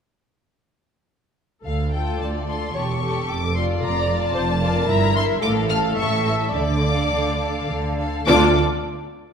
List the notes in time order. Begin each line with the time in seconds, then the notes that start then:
1.65 D2 A4 F5
1.94 F4 A4 G5
2.20 D2 D5 A5
2.48 F4 A4 C6
2.75 E1 E2 G4 A4 C#5 C#6
3.02 G4 A4
3.29 F1 F2 D6
3.56 F4 D5 C6
3.82 F1 F2 D5 A#5
4.09 F4 D5
4.23 A5
4.35 F1 F2 C5
4.61 F4 A#4 D5
4.88 G1 G2 E4 E5 A#5
5.15 E4 E5 C6
5.42 A1 A2 A4 F5 D6
5.70 A4 F5 F6
5.97 A1 A2 A4 E5 C#6
6.26 A4 E5 C#6
6.53 D2 D3 D5 D6
6.83 A4 F5
7.11 D2 D3
7.41 A4 F5
7.70 D2 D3
7.99 A4 F5
8.27 D2 D4 F4 A4 D5 D6